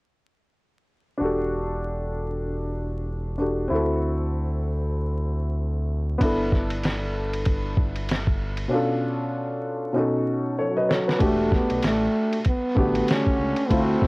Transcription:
1.18 analog synth bass E1, upright piano D4 F#4
1.22 upright piano G4 A4
3.38 upright piano D4 F#4 G4 A4
3.68 analog synth bass D2, upright piano C4 E4
3.72 upright piano F#4 A4
6.18 analog synth bass G1, upright piano B3 D4, kick, ride
6.22 upright piano E4 A4
6.52 kick, snare
6.70 ride
6.83 snare, hi-hat pedal, ride
7.33 ride
7.45 kick, ride
7.77 kick
7.96 ride
8.09 snare, hi-hat pedal, ride
8.27 kick
8.57 ride
8.68 upright piano B2 C#4 D4
8.73 upright piano F4 A4
9.93 upright piano B2 C#4 D#4
9.98 upright piano F#4 A4
10.59 trombone F#3, upright piano A4 C#5
10.77 upright piano B4 D#5
10.89 upright piano A4 C#5, snare
11.08 upright piano B4, snare
11.19 analog synth bass E1, upright piano A3 D4 F#4 G4, kick, ride
11.23 trombone A3
11.52 trombone B3, kick, snare
11.70 analog synth bass B1, ride
11.83 analog synth bass A1, trombone A3, snare, hi-hat pedal, ride
12.33 ride
12.45 trombone B3, kick, ride
12.75 analog synth bass A1, upright piano D3 A3 F#4 G4, kick
12.95 ride
13.08 trombone C#4, snare, hi-hat pedal, ride
13.27 kick
13.40 analog synth bass C#2
13.56 ride
13.67 analog synth bass D2, upright piano A3 C4, trombone B3, kick, ride
13.71 trombone C4, upright piano E4 F4
13.79 upright piano F#4
14.02 analog synth bass C2, kick, snare

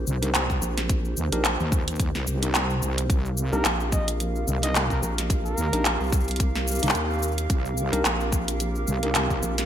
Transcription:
Already playing: analog synth pad C4 G4 A#4 C5
0.07 wobble bass C2, shaker
0.22 tine electric piano D4 D#4 G4 A#4, closed hi-hat, shaker
0.35 clap, closed hi-hat, shaker
0.50 kick, shaker
0.62 wobble bass A#1, shaker
0.78 snare, closed hi-hat, shaker
0.89 kick, closed hi-hat, shaker
1.05 shaker
1.17 wobble bass D#2, shaker
1.32 wobble bass A#1, tine electric piano D4 D#4 G4 A#4, closed hi-hat, shaker
1.45 clap, closed hi-hat, shaker
1.60 wobble bass D#2, shaker
1.72 kick, shaker
1.88 closed hi-hat, shaker
1.91 shaker
1.96 wobble bass D#2, kick, closed hi-hat, shaker
2.00 shaker
2.15 wobble bass C2, snare, shaker
2.27 wobble bass C2, shaker
2.43 tine electric piano D4 D#4 G4 A#4, closed hi-hat, shaker
2.55 clap, closed hi-hat, shaker
2.70 shaker
2.82 wobble bass C2, shaker
2.98 closed hi-hat, shaker
3.10 wobble bass C2, analog synth pad F5, kick, closed hi-hat, shaker
3.25 shaker
3.37 shaker
3.53 wobble bass C2, tine electric piano D4 D#4 G4 A#4, trumpet A#4, shaker
3.65 wobble bass A#1, clap, closed hi-hat, shaker
3.80 shaker
3.92 trumpet D#5, kick, shaker
4.08 closed hi-hat, shaker
4.20 closed hi-hat, shaker
4.36 shaker
4.47 wobble bass C2, shaker
4.63 tine electric piano D4 D#4 G4 A#4, trumpet D#5, closed hi-hat, shaker
4.75 clap, closed hi-hat, shaker
4.90 trumpet A#4, kick, shaker
5.02 wobble bass A#1, trumpet A#4, shaker
5.18 snare, closed hi-hat, shaker
5.30 kick, closed hi-hat, shaker
5.46 trumpet A#4, shaker
5.57 wobble bass D#2, shaker
5.73 wobble bass A#1, tine electric piano D4 D#4 G4 A#4, closed hi-hat, shaker
5.85 clap, closed hi-hat, shaker
6.00 wobble bass C2, shaker
6.04 shaker
6.07 shaker
6.10 kick, shaker
6.13 shaker
6.20 shaker
6.24 closed hi-hat, shaker
6.28 closed hi-hat, shaker
6.36 kick, closed hi-hat
6.40 closed hi-hat, shaker
6.56 snare, shaker
6.68 shaker
6.71 shaker
6.75 shaker
6.79 wobble bass C2, tine electric piano D4 D#4 G4 A#4, closed hi-hat, shaker
6.86 clap, shaker
6.89 shaker
6.92 wobble bass D#2, closed hi-hat, shaker
6.95 shaker
7.10 shaker
7.13 shaker
7.19 shaker
7.23 shaker
7.28 shaker
7.32 shaker
7.38 closed hi-hat, shaker
7.50 wobble bass C2, kick, closed hi-hat, shaker
7.65 shaker
7.77 shaker
7.93 wobble bass C2, tine electric piano D4 D#4 G4 A#4, closed hi-hat, shaker
8.05 wobble bass A#1, clap, closed hi-hat, shaker
8.21 shaker
8.32 kick, shaker
8.48 closed hi-hat, shaker
8.60 closed hi-hat, shaker
8.75 shaker
8.87 wobble bass C2, shaker
9.03 tine electric piano D4 D#4 G4 A#4, closed hi-hat
9.15 clap, closed hi-hat, shaker
9.30 kick, shaker
9.43 wobble bass A#1, shaker
9.58 snare, closed hi-hat, shaker

